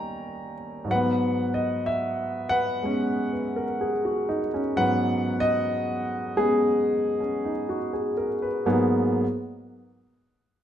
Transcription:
grand piano
Already playing: D#2 D#3 G3 A#3 C#4 D#4 C#5 G5 A#5
0.84 G#2 F#3
0.91 B4 F#5
0.95 B3
1.54 D#5
1.86 E5
2.49 B4 F#5
2.83 G#3 B3 C#4
3.33 B4
3.56 A#4
3.81 G#4
4.05 F#4
4.29 D#4
4.54 C#4
4.76 G#2 F#3 B4 F#5
4.81 B3
5.40 D#5
6.37 G#3 B3 G#4
6.41 C#4
7.20 C#4
7.45 D#4
7.69 F#4
7.93 G#4
8.17 A#4
8.42 B4
8.66 G#2 F#3 A#3 B3 G#4

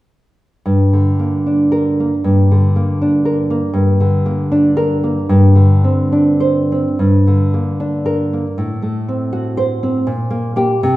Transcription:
nylon-string guitar
0.66 G2
0.93 D3
1.19 A#3
1.46 D4
1.72 A#4
2.00 A#3
2.24 G2
2.51 D3
2.76 A#3
3.02 D4
3.25 A#4
3.50 A#3
3.73 G2
4.00 D3
4.26 A#3
4.52 D4
4.77 A#4
5.04 A#3
5.29 G2
5.55 D3
5.84 C4
6.12 D4
6.40 C5
6.72 C4
6.99 G2
7.27 D3
7.54 A#3
7.80 D4
8.06 A#4
8.33 A#3
8.58 A2
8.82 A3
9.08 C4
9.33 F#4
9.57 C5
9.83 C4
10.07 A#2
10.30 A#3
10.56 A#3 G4
10.83 C3

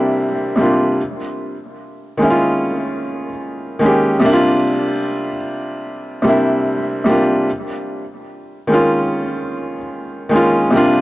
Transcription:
felt piano
Already playing: C3 G3 A#3 D4 E4
0.56 C3 G3 A#3
0.60 D4 F4
2.17 D#3 G#3 A#3
2.22 C#4 E4
2.30 F4
3.79 D#3 G#3 A#3
3.84 C#4 G4
4.20 C3 G3 A#3
4.25 D4 E4
4.33 F4
6.22 C3 G3 A#3
6.27 D4 E4
7.04 C3 G3 A#3
7.09 D4 F4
8.67 D#3 G#3 A#3
8.72 C#4 F4
10.29 D#3 G#3 A#3
10.34 C#4 F4
10.71 C3 G3 A#3
10.76 D4 F4

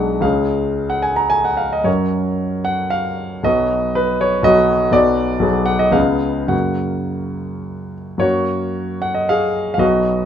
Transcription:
grand piano
Already playing: B1 G#3 D4 G#4 F#5
0.20 C#2 G#3 C#4 G#4 F5
0.90 F#5
1.02 G#5
1.16 A#5
1.30 G#5
1.45 F#5
1.57 F5
1.73 D#5
1.84 F#2 F#3 C#4 A#4 C#5
2.65 F#5
2.90 F5
3.43 B1 F#3 B3 F#4 D#5
3.95 B4
4.21 C#5
4.43 B1 F#3 B3 F#4 D#5
4.91 B1 F#3 B3 F#4 D5
5.39 B1 F#3 B3 G#4
5.66 F#5
5.79 D#5
5.91 C#2 C#3 B3 G#4 F5
6.47 F#2 C#3 A#3 F#4 F#5
8.18 F#2 F#3 A#3 F#4 C#5
9.02 F#5
9.14 D#5
9.29 G#4 F5
9.74 B1 F5
9.78 F#3 B3 F#4 D#5

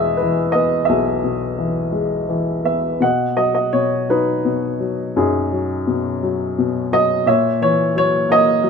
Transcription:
upright piano
Already playing: E2 B2 E3 G#3 G#4 D#5 E5
0.17 B4
0.22 E3
0.52 B3 D#5
0.85 E5
0.89 B1 G#4
1.24 B2
1.59 E3
1.92 G#3
2.29 E3
2.64 B3 E5
3.00 B2 D#5 F#5
3.37 F#3 D#5
3.55 D#5
3.73 B2 C#5
4.09 F#3 D#4 B4
4.45 B2
4.80 F#3
5.16 F#2 D#4 G#4
5.53 F#3
5.87 B2
6.23 F#3
6.59 B2
6.92 F#3 D#5
7.26 A#2 C#5 E5
7.62 E3 C#5
7.95 F#3 C#5
8.29 A#3 D#5
8.63 F#3

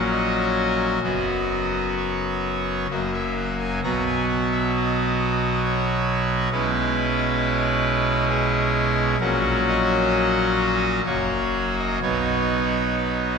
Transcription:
pipe organ
Already playing: A#1 A#2 F#3 C#4 F#4
0.11 D#5
1.03 F#1 F#2 F#3 B3 F#4 D#5
1.97 C#5
2.90 F#1 F#2 F#3 A#3 F#4 D#5
3.13 E5
3.36 F#5
3.59 G#5
3.83 B1 B2 F#3 B3 F#4 A#5
4.06 G#5
4.29 F#5
4.52 E5
4.75 D#5
5.64 C#5
6.52 B1 B2 G#3 C#4 E4 B4
8.29 G#4
9.20 A#1 A#2 F#3 C#4 F#4 A#4
9.68 D#5
11.06 F#1 F#2 F#3 A#3 F#4 C#5
11.78 D#5
12.02 B1 B2 F#3 B3 D#4 C#5
12.97 B4

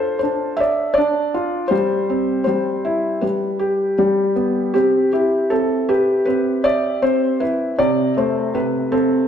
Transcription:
felt piano
Already playing: D4 F4 A4 C5
0.19 D4 C5
0.57 D5 E5
0.94 D5
0.98 D4
1.34 F4
1.68 G3 C5
2.10 C4
2.44 G3 C5
2.85 E4
3.21 G3 B4
3.59 G4
3.98 G3
4.36 B3
4.74 C4 G4
5.13 E4 G4
5.50 C4 A4
5.89 G4 B4
6.26 C4 B4
6.64 D5 E5
7.02 C4 C5
7.40 E4 B4
7.78 C3 D5
8.17 A3 C5
8.54 C3 B4
8.92 C4 A4

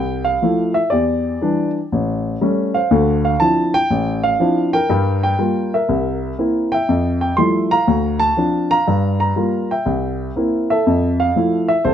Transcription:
grand piano
Already playing: C2 G5
0.25 F5
0.42 F3 A3 E4
0.74 E5
0.90 E2 G4 D5
1.41 E3 G3 D4
1.92 A1
2.41 G3 A3 C#4
2.74 C5 F5
2.91 D2 D3
3.25 F5
3.40 F3 C4 D4 E4 A5
3.74 G5
3.90 A1
4.23 F5
4.40 F3 C4 D4 E4
4.73 A#4 G5
4.90 G2 G3
5.23 G5
5.39 G3 A#3 F4
5.74 A#4 E5
5.89 C2
6.38 A#3 C4 E4
6.72 E5 G5
6.89 F2
7.21 G5
7.37 F3 G3 A3 E4 C6
7.71 F5 A#5
7.87 D2
8.20 A5
8.37 F3 C4 D4
8.71 F5 A#5
8.88 G2
9.20 A#5
9.36 G3 A#3 F4
9.71 E5 G5
9.86 C2
10.36 A#3 C4 E4
10.70 A4 E5
10.87 F2
11.20 F5
11.36 F3 A3 E4
11.68 E5
11.85 C2 A4 C5

